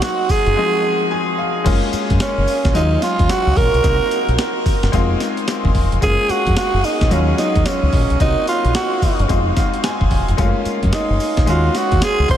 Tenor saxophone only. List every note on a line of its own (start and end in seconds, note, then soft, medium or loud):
0.04 0.32 F#4 medium
0.31 1.12 G#4 loud
2.22 2.72 C#4 medium
2.76 3.04 D#4 medium
3.03 3.32 F4 loud
3.30 3.59 F#4 loud
3.57 4.66 A#4 loud
6.03 6.32 G#4 loud
6.30 6.57 F#4 loud
6.58 6.86 F#4 loud
6.85 7.13 D#4 loud
7.12 7.38 C#4 medium
7.39 7.68 D#4 medium
7.67 8.21 C#4 medium
8.21 8.46 D#4 loud
8.49 8.73 F4 loud
8.76 9.26 F#4 medium
10.94 11.44 D#4 medium
11.49 11.79 F4 medium
11.77 12.05 F#4 loud
12.04 12.30 G#4 loud
12.31 12.37 C5 loud